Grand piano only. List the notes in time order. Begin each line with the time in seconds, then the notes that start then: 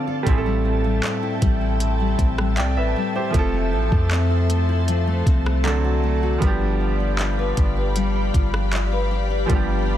0.23 G3 A3
0.27 C4 E4
0.31 G#4
0.38 A4
2.58 D5 G5
2.77 B4 E5
3.16 G4 C5
3.30 F3 A3
3.34 C4 E4
3.39 A4
5.64 F#3 A3 C4 D4
5.68 A4
6.38 F3 G3
6.42 B3 D4
6.47 G4
9.46 F3 G3
9.50 B3 D4
9.55 G4